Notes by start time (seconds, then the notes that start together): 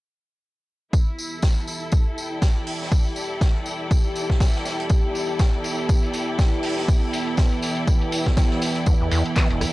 0.93 E3 B3 E4 G4, kick, tambourine
1.18 open hi-hat, tambourine
1.32 A4, closed hi-hat
1.42 kick, snare, tambourine
1.57 closed hi-hat
1.67 open hi-hat, tambourine
1.82 closed hi-hat
1.92 kick, tambourine
2.07 open hi-hat
2.11 G5
2.17 open hi-hat, tambourine
2.31 D5, closed hi-hat
2.42 kick, snare, tambourine
2.67 open hi-hat
2.81 snare, closed hi-hat
2.92 kick, tambourine
3.16 open hi-hat, tambourine
3.31 closed hi-hat
3.41 kick, snare, tambourine
3.55 closed hi-hat
3.66 open hi-hat, tambourine
3.80 closed hi-hat
3.91 kick, tambourine
4.05 closed hi-hat
4.15 open hi-hat, tambourine
4.30 kick, snare, closed hi-hat
4.40 kick, snare, tambourine
4.54 snare, closed hi-hat
4.65 snare, open hi-hat, tambourine
4.79 closed hi-hat
4.89 kick, tambourine
5.15 open hi-hat, tambourine
5.29 closed hi-hat
5.39 kick, snare, tambourine
5.54 closed hi-hat
5.64 open hi-hat, tambourine
5.78 closed hi-hat
5.89 kick, tambourine
6.03 open hi-hat
6.13 open hi-hat, tambourine
6.28 closed hi-hat
6.39 kick, snare, tambourine
6.53 closed hi-hat
6.63 open hi-hat
6.77 snare, closed hi-hat
6.88 kick, tambourine
7.13 open hi-hat, tambourine
7.27 closed hi-hat
7.37 kick, snare, tambourine
7.52 closed hi-hat
7.62 open hi-hat, tambourine
7.77 closed hi-hat
7.87 kick, tambourine
8.02 closed hi-hat
8.12 open hi-hat, tambourine
8.26 kick, snare, closed hi-hat
8.37 kick, snare, tambourine
8.51 snare, closed hi-hat
8.62 snare, open hi-hat, tambourine
8.75 closed hi-hat
8.86 E2 A4, kick, tambourine
9.01 E2
9.11 E2, open hi-hat, tambourine
9.26 closed hi-hat
9.36 E3, kick, snare, clap, tambourine
9.50 E1, closed hi-hat
9.61 F#2, cross-stick, open hi-hat, tambourine